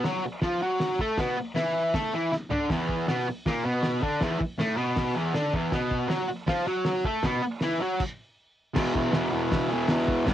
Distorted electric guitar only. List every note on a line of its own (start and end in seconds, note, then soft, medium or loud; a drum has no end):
0.05 0.23 F#3 medium
0.05 0.23 F#4 loud
0.26 muted distorted electric guitar stroke medium
0.42 0.61 F3 medium
0.42 0.62 F4 medium
0.62 0.99 F#3 medium
0.62 0.99 F#4 medium
1.00 1.18 A3 medium
1.00 1.19 A4 loud
1.18 1.36 B2 medium
1.18 1.37 B3 loud
1.38 muted distorted electric guitar stroke medium
1.55 1.93 E3 medium
1.55 1.94 E4 loud
1.94 2.12 A3 medium
1.94 2.13 A4 loud
2.14 2.32 E3 medium
2.14 2.32 E4 medium
2.33 muted distorted electric guitar stroke medium
2.50 2.69 D3 medium
2.50 2.70 D4 medium
2.70 3.08 E2 medium
2.70 3.08 E3 loud
3.07 3.26 B2 medium
3.07 3.27 B3 medium
3.28 muted distorted electric guitar stroke medium
3.46 3.64 A#2 medium
3.46 3.65 A#3 loud
3.64 4.01 B2 medium
3.64 4.03 B3 medium
4.02 4.21 D3 medium
4.02 4.22 D4 medium
4.21 4.38 E2 medium
4.21 4.40 E3 medium
4.39 muted distorted electric guitar stroke medium
4.58 4.77 A2 medium
4.58 4.78 A3 loud
4.77 5.15 B2 medium
4.77 5.16 B3 medium
5.15 5.34 E2 medium
5.15 5.35 E3 medium
5.33 5.53 D3 medium
5.33 5.53 D4 loud
5.53 5.72 E2 medium
5.53 5.73 E3 loud
5.72 6.09 B2 medium
5.72 6.10 B3 medium
6.09 6.29 F#3 medium
6.09 6.29 F#4 loud
6.30 muted distorted electric guitar stroke medium
6.47 6.66 F3 medium
6.47 6.67 F4 loud
6.67 7.05 F#3 loud
6.67 7.05 F#4 loud
7.05 7.24 A3 medium
7.05 7.24 A4 loud
7.23 7.42 B2 loud
7.23 7.43 B3 loud
7.43 muted distorted electric guitar stroke medium
7.62 7.80 E3 medium
7.62 7.81 E4 loud
7.81 7.99 F#3 medium
7.81 8.00 F#4 medium
8.74 9.10 E2 loud
8.74 8.96 B2 loud
8.74 8.93 E3 loud
8.94 9.12 B2 medium
8.94 9.14 E3 medium
9.11 9.50 E2 loud
9.11 9.34 B2 loud
9.15 9.31 E3 loud
9.32 9.72 B2 medium
9.32 9.69 E3 medium
9.70 9.88 B2 medium
9.70 9.90 E3 medium
9.87 10.24 E2 medium
9.87 10.25 B2 medium
9.87 10.26 E3 medium
10.25 10.34 G2 medium
10.25 10.34 D3 medium
10.30 10.34 G3 loud